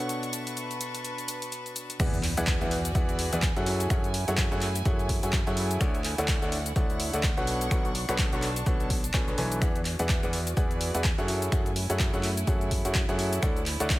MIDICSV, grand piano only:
0, 0, Header, 1, 2, 480
1, 0, Start_track
1, 0, Tempo, 476190
1, 94, Time_signature, 4, 2, 24, 8
1, 14104, End_track
2, 0, Start_track
2, 0, Title_t, "Grand piano"
2, 0, Program_c, 0, 0
2, 0, Note_on_c, 0, 47, 68
2, 0, Note_on_c, 0, 62, 66
2, 0, Note_on_c, 0, 69, 64
2, 0, Note_on_c, 0, 71, 67
2, 0, Note_on_c, 0, 73, 65
2, 0, Note_on_c, 0, 78, 79
2, 1989, Note_off_c, 0, 47, 0
2, 1989, Note_off_c, 0, 62, 0
2, 1989, Note_off_c, 0, 69, 0
2, 1989, Note_off_c, 0, 71, 0
2, 1989, Note_off_c, 0, 73, 0
2, 1989, Note_off_c, 0, 78, 0
2, 2013, Note_on_c, 0, 52, 89
2, 2013, Note_on_c, 0, 64, 85
2, 2013, Note_on_c, 0, 68, 83
2, 2013, Note_on_c, 0, 71, 85
2, 2013, Note_on_c, 0, 74, 83
2, 2014, Note_on_c, 0, 78, 102
2, 2177, Note_off_c, 0, 52, 0
2, 2177, Note_off_c, 0, 64, 0
2, 2177, Note_off_c, 0, 68, 0
2, 2177, Note_off_c, 0, 71, 0
2, 2177, Note_off_c, 0, 74, 0
2, 2177, Note_off_c, 0, 78, 0
2, 2393, Note_on_c, 0, 52, 98
2, 2393, Note_on_c, 0, 64, 88
2, 2393, Note_on_c, 0, 68, 88
2, 2393, Note_on_c, 0, 71, 88
2, 2393, Note_on_c, 0, 74, 88
2, 2393, Note_on_c, 0, 78, 106
2, 2591, Note_off_c, 0, 52, 0
2, 2591, Note_off_c, 0, 64, 0
2, 2591, Note_off_c, 0, 68, 0
2, 2591, Note_off_c, 0, 71, 0
2, 2591, Note_off_c, 0, 74, 0
2, 2591, Note_off_c, 0, 78, 0
2, 2633, Note_on_c, 0, 52, 90
2, 2633, Note_on_c, 0, 64, 84
2, 2633, Note_on_c, 0, 68, 84
2, 2633, Note_on_c, 0, 71, 85
2, 2633, Note_on_c, 0, 74, 84
2, 2633, Note_on_c, 0, 78, 101
2, 2767, Note_off_c, 0, 52, 0
2, 2767, Note_off_c, 0, 64, 0
2, 2767, Note_off_c, 0, 68, 0
2, 2767, Note_off_c, 0, 71, 0
2, 2767, Note_off_c, 0, 74, 0
2, 2767, Note_off_c, 0, 78, 0
2, 2973, Note_on_c, 0, 64, 81
2, 2973, Note_on_c, 0, 71, 81
2, 2974, Note_on_c, 0, 52, 89
2, 2974, Note_on_c, 0, 68, 81
2, 2974, Note_on_c, 0, 74, 80
2, 2974, Note_on_c, 0, 78, 97
2, 3319, Note_off_c, 0, 64, 0
2, 3320, Note_off_c, 0, 52, 0
2, 3320, Note_off_c, 0, 68, 0
2, 3320, Note_off_c, 0, 71, 0
2, 3320, Note_off_c, 0, 74, 0
2, 3320, Note_off_c, 0, 78, 0
2, 3353, Note_on_c, 0, 52, 87
2, 3353, Note_on_c, 0, 64, 79
2, 3353, Note_on_c, 0, 68, 77
2, 3353, Note_on_c, 0, 71, 80
2, 3353, Note_on_c, 0, 74, 76
2, 3353, Note_on_c, 0, 78, 88
2, 3487, Note_off_c, 0, 52, 0
2, 3487, Note_off_c, 0, 64, 0
2, 3487, Note_off_c, 0, 68, 0
2, 3487, Note_off_c, 0, 71, 0
2, 3487, Note_off_c, 0, 74, 0
2, 3487, Note_off_c, 0, 78, 0
2, 3593, Note_on_c, 0, 54, 96
2, 3593, Note_on_c, 0, 64, 83
2, 3593, Note_on_c, 0, 68, 88
2, 3593, Note_on_c, 0, 69, 88
2, 3593, Note_on_c, 0, 73, 87
2, 3593, Note_on_c, 0, 78, 108
2, 3909, Note_off_c, 0, 54, 0
2, 3909, Note_off_c, 0, 64, 0
2, 3909, Note_off_c, 0, 68, 0
2, 3909, Note_off_c, 0, 69, 0
2, 3909, Note_off_c, 0, 73, 0
2, 3909, Note_off_c, 0, 78, 0
2, 3933, Note_on_c, 0, 69, 82
2, 3933, Note_on_c, 0, 73, 83
2, 3934, Note_on_c, 0, 54, 92
2, 3934, Note_on_c, 0, 64, 85
2, 3934, Note_on_c, 0, 68, 84
2, 3934, Note_on_c, 0, 78, 101
2, 4097, Note_off_c, 0, 54, 0
2, 4097, Note_off_c, 0, 64, 0
2, 4097, Note_off_c, 0, 68, 0
2, 4097, Note_off_c, 0, 69, 0
2, 4097, Note_off_c, 0, 73, 0
2, 4097, Note_off_c, 0, 78, 0
2, 4313, Note_on_c, 0, 54, 99
2, 4313, Note_on_c, 0, 64, 86
2, 4313, Note_on_c, 0, 68, 83
2, 4313, Note_on_c, 0, 69, 85
2, 4313, Note_on_c, 0, 73, 90
2, 4313, Note_on_c, 0, 78, 106
2, 4511, Note_off_c, 0, 54, 0
2, 4511, Note_off_c, 0, 64, 0
2, 4511, Note_off_c, 0, 68, 0
2, 4511, Note_off_c, 0, 69, 0
2, 4511, Note_off_c, 0, 73, 0
2, 4511, Note_off_c, 0, 78, 0
2, 4553, Note_on_c, 0, 54, 94
2, 4553, Note_on_c, 0, 64, 84
2, 4553, Note_on_c, 0, 68, 84
2, 4553, Note_on_c, 0, 69, 86
2, 4553, Note_on_c, 0, 73, 85
2, 4553, Note_on_c, 0, 78, 104
2, 4687, Note_off_c, 0, 54, 0
2, 4687, Note_off_c, 0, 64, 0
2, 4687, Note_off_c, 0, 68, 0
2, 4687, Note_off_c, 0, 69, 0
2, 4687, Note_off_c, 0, 73, 0
2, 4687, Note_off_c, 0, 78, 0
2, 4894, Note_on_c, 0, 54, 87
2, 4894, Note_on_c, 0, 64, 80
2, 4894, Note_on_c, 0, 68, 80
2, 4894, Note_on_c, 0, 69, 79
2, 4894, Note_on_c, 0, 73, 81
2, 4894, Note_on_c, 0, 78, 99
2, 5239, Note_off_c, 0, 54, 0
2, 5240, Note_off_c, 0, 64, 0
2, 5240, Note_off_c, 0, 68, 0
2, 5240, Note_off_c, 0, 69, 0
2, 5240, Note_off_c, 0, 73, 0
2, 5240, Note_off_c, 0, 78, 0
2, 5273, Note_on_c, 0, 54, 86
2, 5273, Note_on_c, 0, 64, 75
2, 5273, Note_on_c, 0, 68, 77
2, 5273, Note_on_c, 0, 69, 80
2, 5273, Note_on_c, 0, 73, 76
2, 5273, Note_on_c, 0, 78, 94
2, 5407, Note_off_c, 0, 54, 0
2, 5407, Note_off_c, 0, 64, 0
2, 5407, Note_off_c, 0, 68, 0
2, 5407, Note_off_c, 0, 69, 0
2, 5407, Note_off_c, 0, 73, 0
2, 5407, Note_off_c, 0, 78, 0
2, 5513, Note_on_c, 0, 54, 92
2, 5513, Note_on_c, 0, 64, 86
2, 5513, Note_on_c, 0, 68, 88
2, 5513, Note_on_c, 0, 69, 86
2, 5513, Note_on_c, 0, 73, 87
2, 5513, Note_on_c, 0, 78, 107
2, 5829, Note_off_c, 0, 54, 0
2, 5829, Note_off_c, 0, 64, 0
2, 5829, Note_off_c, 0, 68, 0
2, 5829, Note_off_c, 0, 69, 0
2, 5829, Note_off_c, 0, 73, 0
2, 5829, Note_off_c, 0, 78, 0
2, 5853, Note_on_c, 0, 64, 84
2, 5853, Note_on_c, 0, 69, 82
2, 5853, Note_on_c, 0, 73, 84
2, 5854, Note_on_c, 0, 50, 93
2, 5854, Note_on_c, 0, 74, 87
2, 5854, Note_on_c, 0, 78, 101
2, 6017, Note_off_c, 0, 50, 0
2, 6017, Note_off_c, 0, 64, 0
2, 6017, Note_off_c, 0, 69, 0
2, 6017, Note_off_c, 0, 73, 0
2, 6017, Note_off_c, 0, 74, 0
2, 6017, Note_off_c, 0, 78, 0
2, 6233, Note_on_c, 0, 50, 95
2, 6233, Note_on_c, 0, 64, 88
2, 6233, Note_on_c, 0, 69, 90
2, 6233, Note_on_c, 0, 73, 89
2, 6233, Note_on_c, 0, 74, 87
2, 6233, Note_on_c, 0, 78, 107
2, 6431, Note_off_c, 0, 50, 0
2, 6431, Note_off_c, 0, 64, 0
2, 6431, Note_off_c, 0, 69, 0
2, 6431, Note_off_c, 0, 73, 0
2, 6431, Note_off_c, 0, 74, 0
2, 6431, Note_off_c, 0, 78, 0
2, 6473, Note_on_c, 0, 50, 92
2, 6473, Note_on_c, 0, 64, 83
2, 6473, Note_on_c, 0, 69, 86
2, 6473, Note_on_c, 0, 73, 84
2, 6473, Note_on_c, 0, 74, 84
2, 6473, Note_on_c, 0, 78, 101
2, 6607, Note_off_c, 0, 50, 0
2, 6607, Note_off_c, 0, 64, 0
2, 6607, Note_off_c, 0, 69, 0
2, 6607, Note_off_c, 0, 73, 0
2, 6607, Note_off_c, 0, 74, 0
2, 6607, Note_off_c, 0, 78, 0
2, 6813, Note_on_c, 0, 50, 88
2, 6813, Note_on_c, 0, 64, 81
2, 6813, Note_on_c, 0, 69, 83
2, 6813, Note_on_c, 0, 73, 83
2, 6813, Note_on_c, 0, 74, 82
2, 6813, Note_on_c, 0, 78, 96
2, 7159, Note_off_c, 0, 50, 0
2, 7159, Note_off_c, 0, 64, 0
2, 7159, Note_off_c, 0, 73, 0
2, 7159, Note_off_c, 0, 74, 0
2, 7160, Note_off_c, 0, 69, 0
2, 7160, Note_off_c, 0, 78, 0
2, 7193, Note_on_c, 0, 50, 85
2, 7193, Note_on_c, 0, 64, 78
2, 7193, Note_on_c, 0, 69, 76
2, 7193, Note_on_c, 0, 73, 76
2, 7193, Note_on_c, 0, 74, 77
2, 7193, Note_on_c, 0, 78, 91
2, 7327, Note_off_c, 0, 50, 0
2, 7327, Note_off_c, 0, 64, 0
2, 7327, Note_off_c, 0, 69, 0
2, 7327, Note_off_c, 0, 73, 0
2, 7327, Note_off_c, 0, 74, 0
2, 7327, Note_off_c, 0, 78, 0
2, 7433, Note_on_c, 0, 47, 95
2, 7433, Note_on_c, 0, 62, 86
2, 7433, Note_on_c, 0, 69, 88
2, 7433, Note_on_c, 0, 71, 88
2, 7433, Note_on_c, 0, 73, 90
2, 7433, Note_on_c, 0, 78, 108
2, 7749, Note_off_c, 0, 47, 0
2, 7749, Note_off_c, 0, 62, 0
2, 7749, Note_off_c, 0, 69, 0
2, 7749, Note_off_c, 0, 71, 0
2, 7749, Note_off_c, 0, 73, 0
2, 7749, Note_off_c, 0, 78, 0
2, 7774, Note_on_c, 0, 47, 95
2, 7774, Note_on_c, 0, 62, 87
2, 7774, Note_on_c, 0, 69, 86
2, 7774, Note_on_c, 0, 71, 84
2, 7774, Note_on_c, 0, 73, 85
2, 7774, Note_on_c, 0, 78, 104
2, 7937, Note_off_c, 0, 47, 0
2, 7937, Note_off_c, 0, 62, 0
2, 7937, Note_off_c, 0, 69, 0
2, 7937, Note_off_c, 0, 71, 0
2, 7937, Note_off_c, 0, 73, 0
2, 7937, Note_off_c, 0, 78, 0
2, 8153, Note_on_c, 0, 47, 98
2, 8153, Note_on_c, 0, 62, 89
2, 8153, Note_on_c, 0, 69, 84
2, 8153, Note_on_c, 0, 71, 89
2, 8153, Note_on_c, 0, 73, 88
2, 8153, Note_on_c, 0, 78, 104
2, 8351, Note_off_c, 0, 47, 0
2, 8351, Note_off_c, 0, 62, 0
2, 8351, Note_off_c, 0, 69, 0
2, 8351, Note_off_c, 0, 71, 0
2, 8351, Note_off_c, 0, 73, 0
2, 8351, Note_off_c, 0, 78, 0
2, 8393, Note_on_c, 0, 47, 89
2, 8393, Note_on_c, 0, 62, 83
2, 8393, Note_on_c, 0, 69, 83
2, 8393, Note_on_c, 0, 71, 81
2, 8393, Note_on_c, 0, 73, 85
2, 8393, Note_on_c, 0, 78, 98
2, 8527, Note_off_c, 0, 47, 0
2, 8527, Note_off_c, 0, 62, 0
2, 8527, Note_off_c, 0, 69, 0
2, 8527, Note_off_c, 0, 71, 0
2, 8527, Note_off_c, 0, 73, 0
2, 8527, Note_off_c, 0, 78, 0
2, 8733, Note_on_c, 0, 47, 89
2, 8733, Note_on_c, 0, 62, 77
2, 8733, Note_on_c, 0, 69, 79
2, 8733, Note_on_c, 0, 71, 80
2, 8733, Note_on_c, 0, 73, 81
2, 8733, Note_on_c, 0, 78, 96
2, 9079, Note_off_c, 0, 47, 0
2, 9079, Note_off_c, 0, 62, 0
2, 9079, Note_off_c, 0, 69, 0
2, 9079, Note_off_c, 0, 71, 0
2, 9079, Note_off_c, 0, 73, 0
2, 9079, Note_off_c, 0, 78, 0
2, 9213, Note_on_c, 0, 47, 98
2, 9213, Note_on_c, 0, 62, 91
2, 9213, Note_on_c, 0, 69, 90
2, 9213, Note_on_c, 0, 71, 91
2, 9213, Note_on_c, 0, 73, 90
2, 9213, Note_on_c, 0, 80, 104
2, 9332, Note_off_c, 0, 47, 0
2, 9332, Note_off_c, 0, 62, 0
2, 9332, Note_off_c, 0, 69, 0
2, 9332, Note_off_c, 0, 71, 0
2, 9332, Note_off_c, 0, 73, 0
2, 9332, Note_off_c, 0, 80, 0
2, 9353, Note_on_c, 0, 47, 73
2, 9353, Note_on_c, 0, 62, 73
2, 9353, Note_on_c, 0, 69, 71
2, 9353, Note_on_c, 0, 71, 70
2, 9353, Note_on_c, 0, 73, 68
2, 9353, Note_on_c, 0, 80, 83
2, 9438, Note_off_c, 0, 47, 0
2, 9438, Note_off_c, 0, 62, 0
2, 9438, Note_off_c, 0, 69, 0
2, 9438, Note_off_c, 0, 71, 0
2, 9438, Note_off_c, 0, 73, 0
2, 9438, Note_off_c, 0, 80, 0
2, 9453, Note_on_c, 0, 52, 94
2, 9453, Note_on_c, 0, 62, 91
2, 9453, Note_on_c, 0, 69, 88
2, 9453, Note_on_c, 0, 71, 87
2, 9453, Note_on_c, 0, 73, 86
2, 9453, Note_on_c, 0, 80, 102
2, 9669, Note_off_c, 0, 52, 0
2, 9669, Note_off_c, 0, 62, 0
2, 9669, Note_off_c, 0, 69, 0
2, 9669, Note_off_c, 0, 71, 0
2, 9669, Note_off_c, 0, 73, 0
2, 9669, Note_off_c, 0, 80, 0
2, 9693, Note_on_c, 0, 52, 92
2, 9693, Note_on_c, 0, 64, 86
2, 9693, Note_on_c, 0, 68, 83
2, 9693, Note_on_c, 0, 71, 80
2, 9693, Note_on_c, 0, 74, 81
2, 9693, Note_on_c, 0, 78, 100
2, 9857, Note_off_c, 0, 52, 0
2, 9857, Note_off_c, 0, 64, 0
2, 9857, Note_off_c, 0, 68, 0
2, 9857, Note_off_c, 0, 71, 0
2, 9857, Note_off_c, 0, 74, 0
2, 9857, Note_off_c, 0, 78, 0
2, 10073, Note_on_c, 0, 52, 99
2, 10073, Note_on_c, 0, 64, 89
2, 10073, Note_on_c, 0, 68, 90
2, 10073, Note_on_c, 0, 71, 88
2, 10073, Note_on_c, 0, 74, 83
2, 10073, Note_on_c, 0, 78, 104
2, 10271, Note_off_c, 0, 52, 0
2, 10271, Note_off_c, 0, 64, 0
2, 10271, Note_off_c, 0, 68, 0
2, 10271, Note_off_c, 0, 71, 0
2, 10271, Note_off_c, 0, 74, 0
2, 10271, Note_off_c, 0, 78, 0
2, 10313, Note_on_c, 0, 52, 92
2, 10313, Note_on_c, 0, 68, 84
2, 10314, Note_on_c, 0, 64, 84
2, 10314, Note_on_c, 0, 71, 81
2, 10314, Note_on_c, 0, 74, 87
2, 10314, Note_on_c, 0, 78, 101
2, 10447, Note_off_c, 0, 52, 0
2, 10447, Note_off_c, 0, 64, 0
2, 10447, Note_off_c, 0, 68, 0
2, 10447, Note_off_c, 0, 71, 0
2, 10447, Note_off_c, 0, 74, 0
2, 10447, Note_off_c, 0, 78, 0
2, 10654, Note_on_c, 0, 52, 88
2, 10654, Note_on_c, 0, 64, 80
2, 10654, Note_on_c, 0, 68, 83
2, 10654, Note_on_c, 0, 71, 78
2, 10654, Note_on_c, 0, 74, 83
2, 10654, Note_on_c, 0, 78, 100
2, 11000, Note_off_c, 0, 52, 0
2, 11000, Note_off_c, 0, 64, 0
2, 11000, Note_off_c, 0, 68, 0
2, 11000, Note_off_c, 0, 71, 0
2, 11000, Note_off_c, 0, 74, 0
2, 11000, Note_off_c, 0, 78, 0
2, 11033, Note_on_c, 0, 52, 85
2, 11033, Note_on_c, 0, 64, 75
2, 11033, Note_on_c, 0, 71, 76
2, 11033, Note_on_c, 0, 74, 77
2, 11033, Note_on_c, 0, 78, 94
2, 11034, Note_on_c, 0, 68, 79
2, 11167, Note_off_c, 0, 52, 0
2, 11167, Note_off_c, 0, 64, 0
2, 11167, Note_off_c, 0, 68, 0
2, 11167, Note_off_c, 0, 71, 0
2, 11167, Note_off_c, 0, 74, 0
2, 11167, Note_off_c, 0, 78, 0
2, 11273, Note_on_c, 0, 54, 98
2, 11273, Note_on_c, 0, 64, 88
2, 11273, Note_on_c, 0, 68, 89
2, 11273, Note_on_c, 0, 69, 89
2, 11273, Note_on_c, 0, 78, 105
2, 11274, Note_on_c, 0, 73, 89
2, 11589, Note_off_c, 0, 54, 0
2, 11589, Note_off_c, 0, 64, 0
2, 11589, Note_off_c, 0, 68, 0
2, 11589, Note_off_c, 0, 69, 0
2, 11589, Note_off_c, 0, 73, 0
2, 11589, Note_off_c, 0, 78, 0
2, 11613, Note_on_c, 0, 73, 83
2, 11614, Note_on_c, 0, 54, 92
2, 11614, Note_on_c, 0, 64, 83
2, 11614, Note_on_c, 0, 68, 86
2, 11614, Note_on_c, 0, 69, 82
2, 11614, Note_on_c, 0, 78, 101
2, 11777, Note_off_c, 0, 54, 0
2, 11777, Note_off_c, 0, 64, 0
2, 11777, Note_off_c, 0, 68, 0
2, 11777, Note_off_c, 0, 69, 0
2, 11777, Note_off_c, 0, 73, 0
2, 11777, Note_off_c, 0, 78, 0
2, 11993, Note_on_c, 0, 54, 96
2, 11993, Note_on_c, 0, 64, 89
2, 11993, Note_on_c, 0, 68, 90
2, 11993, Note_on_c, 0, 69, 88
2, 11993, Note_on_c, 0, 73, 85
2, 11993, Note_on_c, 0, 78, 105
2, 12191, Note_off_c, 0, 54, 0
2, 12191, Note_off_c, 0, 64, 0
2, 12191, Note_off_c, 0, 68, 0
2, 12191, Note_off_c, 0, 69, 0
2, 12191, Note_off_c, 0, 73, 0
2, 12191, Note_off_c, 0, 78, 0
2, 12233, Note_on_c, 0, 54, 91
2, 12233, Note_on_c, 0, 64, 85
2, 12233, Note_on_c, 0, 68, 85
2, 12233, Note_on_c, 0, 69, 85
2, 12233, Note_on_c, 0, 73, 86
2, 12233, Note_on_c, 0, 78, 101
2, 12367, Note_off_c, 0, 54, 0
2, 12367, Note_off_c, 0, 64, 0
2, 12367, Note_off_c, 0, 68, 0
2, 12367, Note_off_c, 0, 69, 0
2, 12367, Note_off_c, 0, 73, 0
2, 12367, Note_off_c, 0, 78, 0
2, 12574, Note_on_c, 0, 54, 92
2, 12574, Note_on_c, 0, 64, 82
2, 12574, Note_on_c, 0, 68, 81
2, 12574, Note_on_c, 0, 69, 82
2, 12574, Note_on_c, 0, 73, 78
2, 12574, Note_on_c, 0, 78, 102
2, 12920, Note_off_c, 0, 54, 0
2, 12920, Note_off_c, 0, 64, 0
2, 12920, Note_off_c, 0, 68, 0
2, 12920, Note_off_c, 0, 69, 0
2, 12920, Note_off_c, 0, 73, 0
2, 12920, Note_off_c, 0, 78, 0
2, 12953, Note_on_c, 0, 54, 84
2, 12953, Note_on_c, 0, 64, 76
2, 12953, Note_on_c, 0, 68, 79
2, 12953, Note_on_c, 0, 69, 77
2, 12953, Note_on_c, 0, 73, 79
2, 12953, Note_on_c, 0, 78, 96
2, 13087, Note_off_c, 0, 54, 0
2, 13087, Note_off_c, 0, 64, 0
2, 13087, Note_off_c, 0, 68, 0
2, 13087, Note_off_c, 0, 69, 0
2, 13087, Note_off_c, 0, 73, 0
2, 13087, Note_off_c, 0, 78, 0
2, 13193, Note_on_c, 0, 54, 95
2, 13193, Note_on_c, 0, 64, 91
2, 13193, Note_on_c, 0, 68, 89
2, 13193, Note_on_c, 0, 69, 88
2, 13193, Note_on_c, 0, 73, 87
2, 13193, Note_on_c, 0, 78, 108
2, 13509, Note_off_c, 0, 54, 0
2, 13509, Note_off_c, 0, 64, 0
2, 13509, Note_off_c, 0, 68, 0
2, 13509, Note_off_c, 0, 69, 0
2, 13509, Note_off_c, 0, 73, 0
2, 13509, Note_off_c, 0, 78, 0
2, 13533, Note_on_c, 0, 50, 90
2, 13533, Note_on_c, 0, 64, 85
2, 13533, Note_on_c, 0, 69, 87
2, 13533, Note_on_c, 0, 73, 85
2, 13533, Note_on_c, 0, 74, 87
2, 13533, Note_on_c, 0, 78, 102
2, 13697, Note_off_c, 0, 50, 0
2, 13697, Note_off_c, 0, 64, 0
2, 13697, Note_off_c, 0, 69, 0
2, 13697, Note_off_c, 0, 73, 0
2, 13697, Note_off_c, 0, 74, 0
2, 13697, Note_off_c, 0, 78, 0
2, 13913, Note_on_c, 0, 50, 97
2, 13913, Note_on_c, 0, 64, 89
2, 13913, Note_on_c, 0, 69, 87
2, 13913, Note_on_c, 0, 73, 89
2, 13913, Note_on_c, 0, 74, 87
2, 13913, Note_on_c, 0, 78, 106
2, 14104, Note_off_c, 0, 50, 0
2, 14104, Note_off_c, 0, 64, 0
2, 14104, Note_off_c, 0, 69, 0
2, 14104, Note_off_c, 0, 73, 0
2, 14104, Note_off_c, 0, 74, 0
2, 14104, Note_off_c, 0, 78, 0
2, 14104, End_track
0, 0, End_of_file